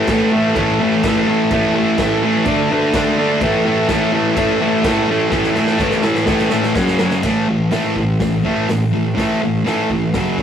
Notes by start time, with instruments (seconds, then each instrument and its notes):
Already playing: distorted electric guitar A3
0.07 distorted electric guitar A2 E3 A3, transistor combo organ E4 A4 C#5, kick, snare, crash
0.32 distorted electric guitar A2 E3 A3, transistor combo organ E4 A4 E5
0.55 distorted electric guitar A2 E3 A3, transistor combo organ E4 A4 C#5, kick, crash
0.79 distorted electric guitar A2 E3 A3, transistor combo organ E4 A4 B4
1.02 distorted electric guitar A2 E3 A3, transistor combo organ E4 A4 B4, kick, snare, crash
1.26 distorted electric guitar A2 E3, transistor combo organ E4 A4 C#5
1.31 distorted electric guitar A3
1.48 distorted electric guitar A2, transistor combo organ E4 A4 C#5, kick, crash
1.53 distorted electric guitar E3 A3
1.73 distorted electric guitar A2 E3 A3, transistor combo organ E4 A4 C#5
1.98 distorted electric guitar A2 E3 A3, transistor combo organ E4 A4 C#5, kick, snare, crash
2.21 distorted electric guitar A2 E3 A3, transistor combo organ E4 A4 C#5
2.45 distorted electric guitar D3 A3 D4, transistor combo organ D4 A4 D5, kick, crash
2.70 distorted electric guitar D3 A3 D4, transistor combo organ D4 A4 B4
2.94 distorted electric guitar D3 A3 D4, transistor combo organ D4 A4 D5, kick, snare, crash
3.17 distorted electric guitar D3 A3 D4, transistor combo organ D4 A4 D5
3.40 distorted electric guitar A2 E3 A3, transistor combo organ E4 A4 C#5, kick, crash
3.65 distorted electric guitar A2 E3 A3, transistor combo organ E4 A4 C#5
3.89 distorted electric guitar A2 E3 A3, transistor combo organ E4 A4 C#5, kick, snare, crash
4.12 distorted electric guitar A2 E3 A3, transistor combo organ E4 A4 B4
4.36 distorted electric guitar A2 E3 A3, transistor combo organ E4 A4 E5, kick, crash
4.61 distorted electric guitar A2 E3 A3, transistor combo organ E4 A4 C#5
4.84 distorted electric guitar A2 E3 A3, transistor combo organ E4 A4 C#5, kick, snare, crash
5.08 distorted electric guitar A2 E3 A3, transistor combo organ E4 A4 C#5
5.31 distorted electric guitar A2 E3 A3, transistor combo organ E4 A4 C#5, kick, snare
5.44 snare
5.55 distorted electric guitar A2 E3 A3, transistor combo organ E4 A4 C#5, snare
5.67 snare
5.79 distorted electric guitar A2 E3 A3, transistor combo organ E4 A4 C#5, kick, snare
5.91 snare
6.02 distorted electric guitar A2 E3 A3, transistor combo organ E4 A4 C#5, snare
6.15 snare
6.26 distorted electric guitar A2 E3 A3, transistor combo organ E4 A4 C#5, kick, snare
6.39 snare
6.50 distorted electric guitar A2 E3 A3, transistor combo organ E4 A4 E5, snare
6.63 snare
6.75 distorted electric guitar F#2 C#3 F#3, transistor combo organ C#4 F#4 C#5, kick, snare
6.88 snare
6.98 distorted electric guitar F#2 C#3 F#3, transistor combo organ C#4 F#4 C#5, snare
7.11 snare
7.23 distorted electric guitar A2 E3 A3, kick, snare, crash
7.48 distorted electric guitar A2 E3
7.71 distorted electric guitar A2 E3 A3, snare, open hi-hat
7.96 distorted electric guitar A2 E3, kick
8.20 distorted electric guitar A2 E3, kick, snare, open hi-hat
8.44 distorted electric guitar A2 E3 A3, kick
8.68 distorted electric guitar A2 E3, snare, open hi-hat
8.93 distorted electric guitar A2 E3
9.15 distorted electric guitar A2 E3 A3, kick, snare, open hi-hat
9.42 distorted electric guitar A2 E3
9.64 distorted electric guitar A2 E3 A3, snare, open hi-hat
9.90 distorted electric guitar A2 E3, kick
10.14 distorted electric guitar F#2 C#3 F#3, kick, snare, open hi-hat
10.38 distorted electric guitar F#2, kick